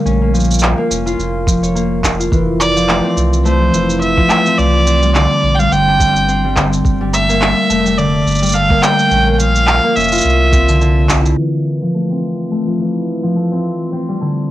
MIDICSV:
0, 0, Header, 1, 5, 480
1, 0, Start_track
1, 0, Key_signature, -1, "major"
1, 0, Tempo, 566038
1, 47, Time_signature, 4, 2, 24, 8
1, 12303, End_track
2, 0, Start_track
2, 0, Title_t, "Violin"
2, 0, Program_c, 0, 40
2, 2207, Note_on_c, 0, 74, 116
2, 2653, Note_off_c, 0, 74, 0
2, 2927, Note_on_c, 0, 72, 80
2, 3373, Note_off_c, 0, 72, 0
2, 3406, Note_on_c, 0, 76, 97
2, 3888, Note_on_c, 0, 74, 103
2, 3901, Note_off_c, 0, 76, 0
2, 4361, Note_off_c, 0, 74, 0
2, 4366, Note_on_c, 0, 74, 96
2, 4707, Note_on_c, 0, 79, 68
2, 4720, Note_off_c, 0, 74, 0
2, 4741, Note_on_c, 0, 77, 91
2, 4753, Note_off_c, 0, 79, 0
2, 4848, Note_on_c, 0, 79, 99
2, 4861, Note_off_c, 0, 77, 0
2, 5568, Note_off_c, 0, 79, 0
2, 6050, Note_on_c, 0, 76, 99
2, 6769, Note_on_c, 0, 74, 89
2, 6781, Note_off_c, 0, 76, 0
2, 7245, Note_on_c, 0, 77, 101
2, 7258, Note_off_c, 0, 74, 0
2, 7485, Note_on_c, 0, 79, 108
2, 7498, Note_off_c, 0, 77, 0
2, 7910, Note_off_c, 0, 79, 0
2, 7910, Note_on_c, 0, 79, 74
2, 7962, Note_on_c, 0, 77, 112
2, 7975, Note_off_c, 0, 79, 0
2, 8445, Note_on_c, 0, 76, 91
2, 8458, Note_off_c, 0, 77, 0
2, 9406, Note_off_c, 0, 76, 0
2, 12303, End_track
3, 0, Start_track
3, 0, Title_t, "Harp"
3, 0, Program_c, 1, 46
3, 0, Note_on_c, 1, 50, 80
3, 0, Note_on_c, 1, 55, 100
3, 0, Note_on_c, 1, 58, 98
3, 0, Note_on_c, 1, 60, 87
3, 48, Note_on_c, 1, 61, 88
3, 89, Note_off_c, 1, 50, 0
3, 90, Note_off_c, 1, 55, 0
3, 99, Note_off_c, 1, 60, 0
3, 180, Note_off_c, 1, 58, 0
3, 184, Note_on_c, 1, 58, 66
3, 287, Note_on_c, 1, 53, 73
3, 657, Note_off_c, 1, 58, 0
3, 661, Note_on_c, 1, 58, 92
3, 764, Note_off_c, 1, 61, 0
3, 767, Note_on_c, 1, 61, 70
3, 900, Note_on_c, 1, 65, 90
3, 1237, Note_off_c, 1, 53, 0
3, 1247, Note_on_c, 1, 53, 61
3, 1381, Note_on_c, 1, 73, 70
3, 1482, Note_off_c, 1, 58, 0
3, 1486, Note_on_c, 1, 58, 78
3, 1722, Note_off_c, 1, 58, 0
3, 1726, Note_on_c, 1, 58, 64
3, 1857, Note_off_c, 1, 65, 0
3, 1860, Note_on_c, 1, 65, 65
3, 1966, Note_on_c, 1, 52, 73
3, 2010, Note_off_c, 1, 53, 0
3, 2017, Note_off_c, 1, 65, 0
3, 2341, Note_on_c, 1, 53, 91
3, 2447, Note_on_c, 1, 57, 79
3, 2498, Note_off_c, 1, 58, 0
3, 2580, Note_on_c, 1, 60, 96
3, 2631, Note_off_c, 1, 61, 0
3, 2631, Note_off_c, 1, 73, 0
3, 2925, Note_off_c, 1, 57, 0
3, 2928, Note_on_c, 1, 57, 94
3, 3051, Note_off_c, 1, 53, 0
3, 3061, Note_on_c, 1, 53, 61
3, 3157, Note_off_c, 1, 52, 0
3, 3167, Note_on_c, 1, 52, 71
3, 3531, Note_off_c, 1, 53, 0
3, 3542, Note_on_c, 1, 53, 93
3, 3645, Note_off_c, 1, 57, 0
3, 3648, Note_on_c, 1, 57, 70
3, 3778, Note_off_c, 1, 60, 0
3, 3781, Note_on_c, 1, 60, 93
3, 3929, Note_off_c, 1, 52, 0
3, 3930, Note_off_c, 1, 53, 0
3, 4124, Note_off_c, 1, 60, 0
3, 4127, Note_on_c, 1, 60, 98
3, 4260, Note_on_c, 1, 55, 74
3, 4367, Note_on_c, 1, 50, 77
3, 4410, Note_off_c, 1, 55, 0
3, 4741, Note_on_c, 1, 55, 95
3, 4844, Note_off_c, 1, 60, 0
3, 4847, Note_on_c, 1, 60, 82
3, 4982, Note_on_c, 1, 62, 89
3, 5322, Note_off_c, 1, 60, 0
3, 5326, Note_on_c, 1, 60, 100
3, 5452, Note_off_c, 1, 55, 0
3, 5463, Note_on_c, 1, 55, 77
3, 5558, Note_off_c, 1, 50, 0
3, 5568, Note_on_c, 1, 50, 76
3, 5610, Note_off_c, 1, 55, 0
3, 5850, Note_off_c, 1, 50, 0
3, 5942, Note_on_c, 1, 55, 84
3, 6044, Note_off_c, 1, 57, 0
3, 6047, Note_on_c, 1, 57, 71
3, 6181, Note_on_c, 1, 58, 99
3, 6232, Note_off_c, 1, 57, 0
3, 6526, Note_on_c, 1, 57, 96
3, 6577, Note_off_c, 1, 58, 0
3, 6652, Note_off_c, 1, 55, 0
3, 6662, Note_on_c, 1, 55, 73
3, 6766, Note_on_c, 1, 50, 81
3, 6810, Note_off_c, 1, 55, 0
3, 7141, Note_on_c, 1, 55, 102
3, 7245, Note_off_c, 1, 57, 0
3, 7248, Note_on_c, 1, 57, 79
3, 7356, Note_off_c, 1, 62, 0
3, 7381, Note_on_c, 1, 58, 104
3, 7432, Note_off_c, 1, 57, 0
3, 7725, Note_on_c, 1, 61, 98
3, 7769, Note_off_c, 1, 50, 0
3, 7769, Note_off_c, 1, 55, 0
3, 7776, Note_off_c, 1, 60, 0
3, 7858, Note_off_c, 1, 58, 0
3, 7862, Note_on_c, 1, 58, 72
3, 7968, Note_on_c, 1, 53, 75
3, 8339, Note_off_c, 1, 58, 0
3, 8342, Note_on_c, 1, 58, 94
3, 8447, Note_off_c, 1, 61, 0
3, 8450, Note_on_c, 1, 61, 74
3, 8584, Note_on_c, 1, 65, 96
3, 8730, Note_off_c, 1, 53, 0
3, 8931, Note_on_c, 1, 60, 70
3, 8982, Note_off_c, 1, 61, 0
3, 9063, Note_on_c, 1, 50, 71
3, 9157, Note_off_c, 1, 50, 0
3, 9167, Note_on_c, 1, 50, 96
3, 9408, Note_on_c, 1, 64, 73
3, 9459, Note_off_c, 1, 65, 0
3, 9530, Note_off_c, 1, 50, 0
3, 9540, Note_on_c, 1, 50, 72
3, 9647, Note_on_c, 1, 52, 63
3, 9689, Note_off_c, 1, 50, 0
3, 10022, Note_on_c, 1, 53, 80
3, 10073, Note_off_c, 1, 64, 0
3, 10128, Note_on_c, 1, 57, 68
3, 10179, Note_off_c, 1, 58, 0
3, 10259, Note_off_c, 1, 60, 0
3, 10262, Note_on_c, 1, 60, 83
3, 10608, Note_off_c, 1, 57, 0
3, 10611, Note_on_c, 1, 57, 86
3, 10734, Note_off_c, 1, 53, 0
3, 10744, Note_on_c, 1, 53, 58
3, 10838, Note_off_c, 1, 52, 0
3, 10848, Note_on_c, 1, 52, 55
3, 11210, Note_off_c, 1, 53, 0
3, 11220, Note_on_c, 1, 53, 83
3, 11326, Note_off_c, 1, 57, 0
3, 11329, Note_on_c, 1, 57, 62
3, 11460, Note_off_c, 1, 60, 0
3, 11464, Note_on_c, 1, 60, 82
3, 11609, Note_off_c, 1, 53, 0
3, 11610, Note_off_c, 1, 52, 0
3, 11807, Note_off_c, 1, 60, 0
3, 11810, Note_on_c, 1, 60, 88
3, 11944, Note_on_c, 1, 55, 61
3, 12050, Note_on_c, 1, 50, 69
3, 12090, Note_off_c, 1, 55, 0
3, 12303, Note_off_c, 1, 50, 0
3, 12303, Note_off_c, 1, 57, 0
3, 12303, Note_off_c, 1, 60, 0
3, 12303, End_track
4, 0, Start_track
4, 0, Title_t, "Sub bass"
4, 0, Program_c, 2, 38
4, 45, Note_on_c, 2, 34, 109
4, 626, Note_off_c, 2, 34, 0
4, 767, Note_on_c, 2, 29, 83
4, 974, Note_off_c, 2, 29, 0
4, 1003, Note_on_c, 2, 29, 91
4, 1938, Note_off_c, 2, 29, 0
4, 1966, Note_on_c, 2, 29, 100
4, 2547, Note_off_c, 2, 29, 0
4, 2684, Note_on_c, 2, 36, 84
4, 3139, Note_off_c, 2, 36, 0
4, 3166, Note_on_c, 2, 29, 79
4, 3620, Note_off_c, 2, 29, 0
4, 3886, Note_on_c, 2, 36, 100
4, 4467, Note_off_c, 2, 36, 0
4, 4604, Note_on_c, 2, 34, 84
4, 4812, Note_off_c, 2, 34, 0
4, 4846, Note_on_c, 2, 31, 91
4, 5780, Note_off_c, 2, 31, 0
4, 5806, Note_on_c, 2, 31, 106
4, 6387, Note_off_c, 2, 31, 0
4, 6525, Note_on_c, 2, 29, 81
4, 6979, Note_off_c, 2, 29, 0
4, 7004, Note_on_c, 2, 31, 84
4, 7459, Note_off_c, 2, 31, 0
4, 7724, Note_on_c, 2, 34, 107
4, 8306, Note_off_c, 2, 34, 0
4, 8448, Note_on_c, 2, 29, 85
4, 8654, Note_off_c, 2, 29, 0
4, 8687, Note_on_c, 2, 36, 93
4, 9403, Note_off_c, 2, 36, 0
4, 9408, Note_on_c, 2, 36, 94
4, 9614, Note_off_c, 2, 36, 0
4, 12303, End_track
5, 0, Start_track
5, 0, Title_t, "Drums"
5, 56, Note_on_c, 9, 82, 30
5, 140, Note_off_c, 9, 82, 0
5, 296, Note_on_c, 9, 82, 34
5, 340, Note_off_c, 9, 82, 0
5, 340, Note_on_c, 9, 82, 38
5, 377, Note_off_c, 9, 82, 0
5, 377, Note_on_c, 9, 82, 46
5, 432, Note_off_c, 9, 82, 0
5, 432, Note_on_c, 9, 82, 50
5, 458, Note_off_c, 9, 82, 0
5, 458, Note_on_c, 9, 82, 58
5, 502, Note_off_c, 9, 82, 0
5, 502, Note_on_c, 9, 82, 65
5, 533, Note_on_c, 9, 39, 71
5, 537, Note_off_c, 9, 82, 0
5, 537, Note_on_c, 9, 82, 31
5, 618, Note_off_c, 9, 39, 0
5, 622, Note_off_c, 9, 82, 0
5, 775, Note_on_c, 9, 82, 72
5, 860, Note_off_c, 9, 82, 0
5, 910, Note_on_c, 9, 82, 40
5, 994, Note_off_c, 9, 82, 0
5, 1016, Note_on_c, 9, 82, 31
5, 1101, Note_off_c, 9, 82, 0
5, 1247, Note_on_c, 9, 36, 98
5, 1255, Note_on_c, 9, 82, 68
5, 1332, Note_off_c, 9, 36, 0
5, 1340, Note_off_c, 9, 82, 0
5, 1388, Note_on_c, 9, 82, 42
5, 1472, Note_off_c, 9, 82, 0
5, 1494, Note_on_c, 9, 82, 34
5, 1579, Note_off_c, 9, 82, 0
5, 1727, Note_on_c, 9, 36, 57
5, 1731, Note_on_c, 9, 39, 71
5, 1734, Note_on_c, 9, 82, 76
5, 1811, Note_off_c, 9, 36, 0
5, 1816, Note_off_c, 9, 39, 0
5, 1819, Note_off_c, 9, 82, 0
5, 1868, Note_on_c, 9, 82, 42
5, 1953, Note_off_c, 9, 82, 0
5, 1967, Note_on_c, 9, 36, 102
5, 1973, Note_on_c, 9, 82, 32
5, 2051, Note_off_c, 9, 36, 0
5, 2058, Note_off_c, 9, 82, 0
5, 2211, Note_on_c, 9, 82, 74
5, 2296, Note_off_c, 9, 82, 0
5, 2349, Note_on_c, 9, 82, 43
5, 2433, Note_off_c, 9, 82, 0
5, 2450, Note_on_c, 9, 39, 71
5, 2454, Note_on_c, 9, 82, 32
5, 2535, Note_off_c, 9, 39, 0
5, 2538, Note_off_c, 9, 82, 0
5, 2691, Note_on_c, 9, 82, 70
5, 2776, Note_off_c, 9, 82, 0
5, 2826, Note_on_c, 9, 82, 43
5, 2911, Note_off_c, 9, 82, 0
5, 2931, Note_on_c, 9, 82, 31
5, 3015, Note_off_c, 9, 82, 0
5, 3170, Note_on_c, 9, 82, 70
5, 3255, Note_off_c, 9, 82, 0
5, 3305, Note_on_c, 9, 82, 42
5, 3389, Note_off_c, 9, 82, 0
5, 3409, Note_on_c, 9, 82, 33
5, 3494, Note_off_c, 9, 82, 0
5, 3541, Note_on_c, 9, 36, 101
5, 3626, Note_off_c, 9, 36, 0
5, 3644, Note_on_c, 9, 39, 75
5, 3648, Note_on_c, 9, 82, 81
5, 3729, Note_off_c, 9, 39, 0
5, 3733, Note_off_c, 9, 82, 0
5, 3782, Note_on_c, 9, 82, 41
5, 3867, Note_off_c, 9, 82, 0
5, 3891, Note_on_c, 9, 82, 30
5, 3976, Note_off_c, 9, 82, 0
5, 4129, Note_on_c, 9, 82, 73
5, 4214, Note_off_c, 9, 82, 0
5, 4263, Note_on_c, 9, 82, 41
5, 4348, Note_off_c, 9, 82, 0
5, 4367, Note_on_c, 9, 39, 71
5, 4370, Note_on_c, 9, 82, 31
5, 4451, Note_off_c, 9, 39, 0
5, 4455, Note_off_c, 9, 82, 0
5, 4745, Note_on_c, 9, 82, 37
5, 4830, Note_off_c, 9, 82, 0
5, 4852, Note_on_c, 9, 82, 30
5, 4936, Note_off_c, 9, 82, 0
5, 5087, Note_on_c, 9, 36, 94
5, 5091, Note_on_c, 9, 82, 66
5, 5172, Note_off_c, 9, 36, 0
5, 5176, Note_off_c, 9, 82, 0
5, 5225, Note_on_c, 9, 82, 38
5, 5310, Note_off_c, 9, 82, 0
5, 5331, Note_on_c, 9, 82, 31
5, 5415, Note_off_c, 9, 82, 0
5, 5566, Note_on_c, 9, 36, 52
5, 5567, Note_on_c, 9, 39, 70
5, 5571, Note_on_c, 9, 82, 74
5, 5651, Note_off_c, 9, 36, 0
5, 5652, Note_off_c, 9, 39, 0
5, 5656, Note_off_c, 9, 82, 0
5, 5707, Note_on_c, 9, 82, 41
5, 5791, Note_off_c, 9, 82, 0
5, 5806, Note_on_c, 9, 36, 98
5, 5813, Note_on_c, 9, 82, 31
5, 5891, Note_off_c, 9, 36, 0
5, 5897, Note_off_c, 9, 82, 0
5, 6051, Note_on_c, 9, 82, 75
5, 6136, Note_off_c, 9, 82, 0
5, 6188, Note_on_c, 9, 82, 39
5, 6272, Note_off_c, 9, 82, 0
5, 6290, Note_on_c, 9, 39, 79
5, 6293, Note_on_c, 9, 82, 30
5, 6374, Note_off_c, 9, 39, 0
5, 6378, Note_off_c, 9, 82, 0
5, 6531, Note_on_c, 9, 82, 68
5, 6616, Note_off_c, 9, 82, 0
5, 6666, Note_on_c, 9, 82, 40
5, 6750, Note_off_c, 9, 82, 0
5, 6769, Note_on_c, 9, 82, 31
5, 6854, Note_off_c, 9, 82, 0
5, 7014, Note_on_c, 9, 82, 33
5, 7046, Note_off_c, 9, 82, 0
5, 7046, Note_on_c, 9, 82, 34
5, 7080, Note_off_c, 9, 82, 0
5, 7080, Note_on_c, 9, 82, 37
5, 7111, Note_off_c, 9, 82, 0
5, 7111, Note_on_c, 9, 82, 41
5, 7147, Note_off_c, 9, 82, 0
5, 7147, Note_on_c, 9, 82, 47
5, 7173, Note_off_c, 9, 82, 0
5, 7173, Note_on_c, 9, 82, 51
5, 7198, Note_off_c, 9, 82, 0
5, 7198, Note_on_c, 9, 82, 56
5, 7224, Note_off_c, 9, 82, 0
5, 7224, Note_on_c, 9, 82, 58
5, 7250, Note_off_c, 9, 82, 0
5, 7250, Note_on_c, 9, 82, 34
5, 7334, Note_off_c, 9, 82, 0
5, 7379, Note_on_c, 9, 36, 95
5, 7464, Note_off_c, 9, 36, 0
5, 7487, Note_on_c, 9, 39, 75
5, 7490, Note_on_c, 9, 82, 75
5, 7572, Note_off_c, 9, 39, 0
5, 7575, Note_off_c, 9, 82, 0
5, 7624, Note_on_c, 9, 82, 42
5, 7709, Note_off_c, 9, 82, 0
5, 7728, Note_on_c, 9, 82, 32
5, 7813, Note_off_c, 9, 82, 0
5, 7969, Note_on_c, 9, 82, 78
5, 8054, Note_off_c, 9, 82, 0
5, 8102, Note_on_c, 9, 82, 42
5, 8187, Note_off_c, 9, 82, 0
5, 8203, Note_on_c, 9, 39, 82
5, 8207, Note_on_c, 9, 82, 31
5, 8288, Note_off_c, 9, 39, 0
5, 8292, Note_off_c, 9, 82, 0
5, 8449, Note_on_c, 9, 82, 31
5, 8481, Note_off_c, 9, 82, 0
5, 8481, Note_on_c, 9, 82, 38
5, 8515, Note_off_c, 9, 82, 0
5, 8515, Note_on_c, 9, 82, 42
5, 8551, Note_off_c, 9, 82, 0
5, 8551, Note_on_c, 9, 82, 44
5, 8584, Note_off_c, 9, 82, 0
5, 8584, Note_on_c, 9, 82, 48
5, 8607, Note_off_c, 9, 82, 0
5, 8607, Note_on_c, 9, 82, 55
5, 8633, Note_off_c, 9, 82, 0
5, 8633, Note_on_c, 9, 82, 60
5, 8653, Note_off_c, 9, 82, 0
5, 8653, Note_on_c, 9, 82, 32
5, 8660, Note_off_c, 9, 82, 0
5, 8660, Note_on_c, 9, 82, 61
5, 8733, Note_off_c, 9, 82, 0
5, 8733, Note_on_c, 9, 82, 26
5, 8818, Note_off_c, 9, 82, 0
5, 8927, Note_on_c, 9, 36, 100
5, 8929, Note_on_c, 9, 82, 72
5, 9012, Note_off_c, 9, 36, 0
5, 9014, Note_off_c, 9, 82, 0
5, 9062, Note_on_c, 9, 82, 37
5, 9147, Note_off_c, 9, 82, 0
5, 9170, Note_on_c, 9, 82, 34
5, 9255, Note_off_c, 9, 82, 0
5, 9407, Note_on_c, 9, 39, 79
5, 9408, Note_on_c, 9, 36, 55
5, 9411, Note_on_c, 9, 82, 74
5, 9492, Note_off_c, 9, 39, 0
5, 9493, Note_off_c, 9, 36, 0
5, 9495, Note_off_c, 9, 82, 0
5, 9546, Note_on_c, 9, 82, 43
5, 9630, Note_off_c, 9, 82, 0
5, 12303, End_track
0, 0, End_of_file